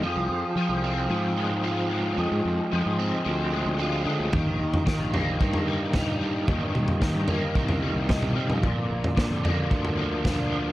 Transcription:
<<
  \new Staff \with { instrumentName = "Harmonium" } { \time 4/4 \key f \dorian \tempo 4 = 112 << { f''1 | ees''1~ | ees''1~ | ees''1 |
d''1 | } \\ { aes'1~ | aes'1 | g'1~ | g'1 |
f'1 | } >> }
  \new Staff \with { instrumentName = "Harmonium" } { \time 4/4 \key f \dorian c'1~ | c'1 | bes1~ | bes1~ |
bes1 | }
  \new Staff \with { instrumentName = "Overdriven electric guitar" } { \clef bass \time 4/4 \key f \dorian f4 f8 c'8 f8 aes8 f'8 aes8 | f4 f8 c'8 f8 aes8 f'8 aes8 | ees4 ees8 bes8 ees8 g8 ees'8 g8 | ees4 ees8 bes8 ees8 g8 ees'8 g8 |
bes,4 d8 bes8 d8 f8 d'8 f8 | }
  \new Staff \with { instrumentName = "Fingered electric bass" } { \clef bass \time 4/4 \key f \dorian f,16 c,16 f,16 r16 f16 c,8. aes,2 | f,16 aes,16 f,16 r16 f,16 aes,8 r16 d,8. d,8. d16 d,16 | ees,16 bes,,16 ees,16 r16 ees16 bes,,8. g,2 | ees,16 g,16 ees,16 r16 ees,16 g,8 r16 c,8. c,8. c16 f,16 |
bes,,16 f,16 bes,,16 r16 bes,16 f,8. d,2 | }
  \new DrumStaff \with { instrumentName = "Drums" } \drummode { \time 4/4 r4 r4 r4 r4 | r4 r4 r4 r4 | <bd tomfh>8. tomfh16 <bd sn>8 tomfh8 bd16 tomfh8. <bd sn tomfh toml>4 | <bd tomfh>8 toml16 tomfh16 <bd sn>8 tomfh8 bd16 tomfh8. <bd sn tomfh toml>16 toml8 toml16 |
<bd tomfh>8. tomfh16 <bd sn>8 tomfh8 bd16 tomfh8. <bd sn tomfh toml>4 | }
>>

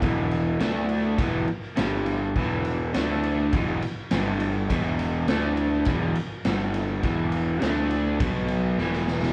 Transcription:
<<
  \new Staff \with { instrumentName = "Overdriven electric guitar" } { \clef bass \time 4/4 \key e \minor \tempo 4 = 103 <e, b, e>4 <d a d'>4 <e, b, e>8 r8 <g, d g>4 | <e, b, e>4 <d a d'>4 <e, b, e>8 r8 <g, d g>4 | <e, b, e>4 <d a d'>4 <e, b, e>8 r8 <g, d g>4 | <e, b, e>4 <d a d'>4 <b, fis b>4 <e, b, e>4 | }
  \new Staff \with { instrumentName = "Picked electric bass" } { \clef bass \time 4/4 \key e \minor e,,4 d,4 e,,8 r8 g,,4 | e,,4 d,4 e,,8 r8 g,,4 | e,,4 d,4 e,,8 r8 g,,4 | e,,4 d,4 b,,4 e,,4 | }
  \new DrumStaff \with { instrumentName = "Drums" } \drummode { \time 4/4 <bd cymr>8 cymr8 <cymr sn>8 cymr8 <bd cymr>8 cymr8 <cymr sn>8 cymr8 | <bd cymr>8 cymr8 <cymr sn>8 cymr8 <bd cymr>8 cymr8 <cymr sn>8 cymr8 | <bd cymr>8 cymr8 <cymr sn>8 cymr8 <bd cymr>8 cymr8 <cymr sn>8 cymr8 | <bd cymr>8 cymr8 <cymr sn>8 cymr8 <bd cymr>8 cymr8 sn16 sn16 sn16 sn16 | }
>>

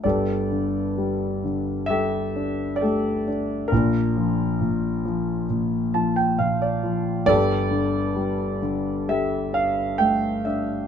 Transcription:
<<
  \new Staff \with { instrumentName = "Grand piano" } { \time 4/4 \key g \dorian \tempo 4 = 66 << { d''2 e''4 d''4 | bes'2 r8 a''16 g''16 f''16 d''8. | d''4. r8 e''8 f''8 g''8 e''8 | } \\ { <g' a'>2 <g' a'>4 <g' a'>4 | <d' f'>2 r2 | <g' a'>2 <g' a'>2 | } >> }
  \new Staff \with { instrumentName = "Grand piano" } { \clef bass \time 4/4 \key g \dorian <g,, g,>8 d8 g8 d8 g8 d'8 a8 d'8 | <bes,, bes,>8 f8 bes,8 f8 bes,8 f8 bes,8 f8 | <g,, g,>8 d8 g8 d8 g8 d'8 a8 d'8 | }
>>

